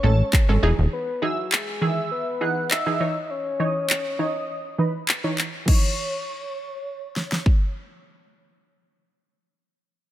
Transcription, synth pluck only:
0, 0, Header, 1, 2, 480
1, 0, Start_track
1, 0, Key_signature, 4, "minor"
1, 0, Tempo, 594059
1, 748, Time_signature, 4, 2, 24, 8
1, 8171, End_track
2, 0, Start_track
2, 0, Title_t, "Synth pluck"
2, 0, Program_c, 0, 84
2, 25, Note_on_c, 0, 56, 76
2, 27, Note_on_c, 0, 61, 65
2, 30, Note_on_c, 0, 69, 83
2, 235, Note_off_c, 0, 56, 0
2, 237, Note_off_c, 0, 61, 0
2, 238, Note_off_c, 0, 69, 0
2, 393, Note_on_c, 0, 56, 89
2, 395, Note_on_c, 0, 61, 80
2, 397, Note_on_c, 0, 69, 97
2, 506, Note_on_c, 0, 52, 96
2, 507, Note_off_c, 0, 56, 0
2, 508, Note_off_c, 0, 61, 0
2, 509, Note_off_c, 0, 69, 0
2, 509, Note_on_c, 0, 63, 88
2, 510, Note_on_c, 0, 68, 111
2, 897, Note_off_c, 0, 52, 0
2, 898, Note_off_c, 0, 63, 0
2, 899, Note_off_c, 0, 68, 0
2, 986, Note_on_c, 0, 52, 75
2, 988, Note_on_c, 0, 63, 71
2, 990, Note_on_c, 0, 68, 85
2, 1265, Note_off_c, 0, 52, 0
2, 1266, Note_off_c, 0, 63, 0
2, 1267, Note_off_c, 0, 68, 0
2, 1466, Note_on_c, 0, 52, 78
2, 1468, Note_on_c, 0, 51, 67
2, 1470, Note_on_c, 0, 68, 84
2, 1745, Note_off_c, 0, 52, 0
2, 1746, Note_off_c, 0, 51, 0
2, 1747, Note_off_c, 0, 68, 0
2, 1946, Note_on_c, 0, 52, 75
2, 1948, Note_on_c, 0, 63, 71
2, 1950, Note_on_c, 0, 68, 82
2, 2156, Note_off_c, 0, 52, 0
2, 2157, Note_off_c, 0, 63, 0
2, 2158, Note_off_c, 0, 68, 0
2, 2313, Note_on_c, 0, 52, 72
2, 2315, Note_on_c, 0, 63, 68
2, 2317, Note_on_c, 0, 68, 80
2, 2416, Note_off_c, 0, 52, 0
2, 2418, Note_off_c, 0, 63, 0
2, 2426, Note_on_c, 0, 52, 80
2, 2428, Note_on_c, 0, 63, 76
2, 2429, Note_off_c, 0, 68, 0
2, 2430, Note_on_c, 0, 73, 86
2, 2817, Note_off_c, 0, 52, 0
2, 2818, Note_off_c, 0, 63, 0
2, 2819, Note_off_c, 0, 73, 0
2, 2905, Note_on_c, 0, 52, 78
2, 2908, Note_on_c, 0, 63, 71
2, 2909, Note_on_c, 0, 73, 84
2, 3184, Note_off_c, 0, 52, 0
2, 3186, Note_off_c, 0, 63, 0
2, 3187, Note_off_c, 0, 73, 0
2, 3385, Note_on_c, 0, 52, 71
2, 3387, Note_on_c, 0, 63, 66
2, 3389, Note_on_c, 0, 73, 81
2, 3664, Note_off_c, 0, 52, 0
2, 3665, Note_off_c, 0, 63, 0
2, 3666, Note_off_c, 0, 73, 0
2, 3866, Note_on_c, 0, 52, 72
2, 3868, Note_on_c, 0, 63, 68
2, 3870, Note_on_c, 0, 75, 80
2, 4076, Note_off_c, 0, 52, 0
2, 4077, Note_off_c, 0, 63, 0
2, 4078, Note_off_c, 0, 75, 0
2, 4233, Note_on_c, 0, 52, 86
2, 4235, Note_on_c, 0, 63, 83
2, 4237, Note_on_c, 0, 73, 99
2, 4439, Note_off_c, 0, 52, 0
2, 4440, Note_off_c, 0, 63, 0
2, 4441, Note_off_c, 0, 73, 0
2, 4571, Note_on_c, 0, 52, 83
2, 4587, Note_on_c, 0, 63, 74
2, 4604, Note_on_c, 0, 73, 89
2, 7302, Note_off_c, 0, 52, 0
2, 7317, Note_off_c, 0, 63, 0
2, 7334, Note_off_c, 0, 73, 0
2, 8171, End_track
0, 0, End_of_file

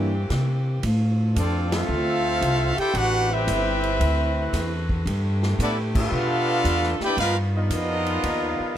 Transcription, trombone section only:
0, 0, Header, 1, 2, 480
1, 0, Start_track
1, 0, Key_signature, -1, "minor"
1, 0, Tempo, 528634
1, 755, Time_signature, 4, 2, 24, 8
1, 7967, End_track
2, 0, Start_track
2, 0, Title_t, "Trombone section"
2, 0, Program_c, 0, 61
2, 1225, Note_on_c, 0, 57, 70
2, 1225, Note_on_c, 0, 62, 74
2, 1226, Note_on_c, 0, 53, 76
2, 1532, Note_off_c, 0, 62, 0
2, 1533, Note_off_c, 0, 53, 0
2, 1533, Note_off_c, 0, 57, 0
2, 1552, Note_on_c, 0, 57, 93
2, 1554, Note_on_c, 0, 65, 98
2, 1556, Note_on_c, 0, 60, 97
2, 2481, Note_off_c, 0, 57, 0
2, 2482, Note_off_c, 0, 65, 0
2, 2483, Note_off_c, 0, 60, 0
2, 2499, Note_on_c, 0, 67, 92
2, 2663, Note_on_c, 0, 66, 96
2, 2666, Note_off_c, 0, 67, 0
2, 2978, Note_on_c, 0, 60, 95
2, 2983, Note_on_c, 0, 64, 82
2, 2986, Note_on_c, 0, 55, 82
2, 2995, Note_off_c, 0, 66, 0
2, 3630, Note_off_c, 0, 55, 0
2, 4429, Note_off_c, 0, 60, 0
2, 4432, Note_off_c, 0, 64, 0
2, 5084, Note_on_c, 0, 52, 70
2, 5084, Note_on_c, 0, 59, 80
2, 5084, Note_on_c, 0, 62, 78
2, 5228, Note_off_c, 0, 52, 0
2, 5228, Note_off_c, 0, 59, 0
2, 5228, Note_off_c, 0, 62, 0
2, 5400, Note_on_c, 0, 62, 105
2, 5401, Note_on_c, 0, 59, 101
2, 5405, Note_on_c, 0, 65, 102
2, 6323, Note_off_c, 0, 59, 0
2, 6323, Note_off_c, 0, 62, 0
2, 6325, Note_off_c, 0, 65, 0
2, 6364, Note_on_c, 0, 64, 96
2, 6370, Note_on_c, 0, 67, 98
2, 6371, Note_on_c, 0, 62, 99
2, 6506, Note_off_c, 0, 64, 0
2, 6510, Note_off_c, 0, 62, 0
2, 6510, Note_off_c, 0, 67, 0
2, 6514, Note_on_c, 0, 53, 99
2, 6518, Note_on_c, 0, 65, 95
2, 6519, Note_on_c, 0, 59, 96
2, 6659, Note_off_c, 0, 53, 0
2, 6663, Note_off_c, 0, 65, 0
2, 6664, Note_off_c, 0, 59, 0
2, 6842, Note_on_c, 0, 59, 90
2, 6844, Note_on_c, 0, 53, 88
2, 6845, Note_on_c, 0, 63, 90
2, 7967, Note_off_c, 0, 53, 0
2, 7967, Note_off_c, 0, 59, 0
2, 7967, Note_off_c, 0, 63, 0
2, 7967, End_track
0, 0, End_of_file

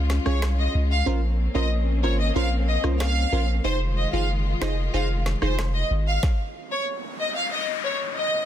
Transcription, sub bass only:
0, 0, Header, 1, 2, 480
1, 0, Start_track
1, 0, Tempo, 645161
1, 795, Time_signature, 4, 2, 24, 8
1, 6289, End_track
2, 0, Start_track
2, 0, Title_t, "Sub bass"
2, 0, Program_c, 0, 38
2, 0, Note_on_c, 0, 37, 113
2, 143, Note_off_c, 0, 37, 0
2, 197, Note_on_c, 0, 36, 88
2, 504, Note_off_c, 0, 36, 0
2, 556, Note_on_c, 0, 37, 82
2, 761, Note_off_c, 0, 37, 0
2, 796, Note_on_c, 0, 34, 105
2, 1104, Note_off_c, 0, 34, 0
2, 1155, Note_on_c, 0, 34, 84
2, 1516, Note_on_c, 0, 32, 97
2, 1527, Note_off_c, 0, 34, 0
2, 1721, Note_off_c, 0, 32, 0
2, 1756, Note_on_c, 0, 34, 104
2, 2064, Note_off_c, 0, 34, 0
2, 2114, Note_on_c, 0, 36, 81
2, 2423, Note_off_c, 0, 36, 0
2, 2474, Note_on_c, 0, 34, 85
2, 2680, Note_off_c, 0, 34, 0
2, 2713, Note_on_c, 0, 29, 110
2, 3022, Note_off_c, 0, 29, 0
2, 3075, Note_on_c, 0, 30, 91
2, 3383, Note_off_c, 0, 30, 0
2, 3435, Note_on_c, 0, 29, 91
2, 3640, Note_off_c, 0, 29, 0
2, 3675, Note_on_c, 0, 29, 102
2, 3983, Note_off_c, 0, 29, 0
2, 4036, Note_on_c, 0, 29, 91
2, 4344, Note_off_c, 0, 29, 0
2, 4395, Note_on_c, 0, 32, 92
2, 4601, Note_off_c, 0, 32, 0
2, 6289, End_track
0, 0, End_of_file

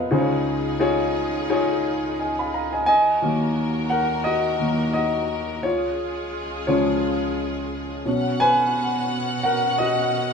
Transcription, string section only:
0, 0, Header, 1, 2, 480
1, 0, Start_track
1, 0, Key_signature, -6, "minor"
1, 0, Tempo, 690608
1, 83, Time_signature, 4, 2, 24, 8
1, 7180, End_track
2, 0, Start_track
2, 0, Title_t, "String section"
2, 0, Program_c, 0, 48
2, 80, Note_on_c, 0, 65, 65
2, 80, Note_on_c, 0, 68, 81
2, 81, Note_on_c, 0, 63, 67
2, 82, Note_on_c, 0, 37, 76
2, 83, Note_on_c, 0, 49, 68
2, 1982, Note_off_c, 0, 65, 0
2, 1982, Note_off_c, 0, 68, 0
2, 1983, Note_off_c, 0, 37, 0
2, 1983, Note_off_c, 0, 63, 0
2, 1984, Note_off_c, 0, 49, 0
2, 2004, Note_on_c, 0, 70, 78
2, 2005, Note_on_c, 0, 39, 77
2, 2006, Note_on_c, 0, 58, 65
2, 2006, Note_on_c, 0, 66, 67
2, 2007, Note_on_c, 0, 51, 67
2, 3905, Note_off_c, 0, 70, 0
2, 3906, Note_off_c, 0, 39, 0
2, 3906, Note_off_c, 0, 51, 0
2, 3906, Note_off_c, 0, 58, 0
2, 3906, Note_off_c, 0, 66, 0
2, 3923, Note_on_c, 0, 49, 66
2, 3924, Note_on_c, 0, 37, 76
2, 3924, Note_on_c, 0, 56, 72
2, 3924, Note_on_c, 0, 65, 72
2, 3924, Note_on_c, 0, 68, 75
2, 5587, Note_off_c, 0, 49, 0
2, 5588, Note_off_c, 0, 37, 0
2, 5588, Note_off_c, 0, 56, 0
2, 5588, Note_off_c, 0, 65, 0
2, 5588, Note_off_c, 0, 68, 0
2, 5610, Note_on_c, 0, 47, 77
2, 5610, Note_on_c, 0, 59, 70
2, 5610, Note_on_c, 0, 61, 68
2, 5610, Note_on_c, 0, 78, 84
2, 5611, Note_on_c, 0, 66, 67
2, 7180, Note_off_c, 0, 47, 0
2, 7180, Note_off_c, 0, 59, 0
2, 7180, Note_off_c, 0, 61, 0
2, 7180, Note_off_c, 0, 66, 0
2, 7180, Note_off_c, 0, 78, 0
2, 7180, End_track
0, 0, End_of_file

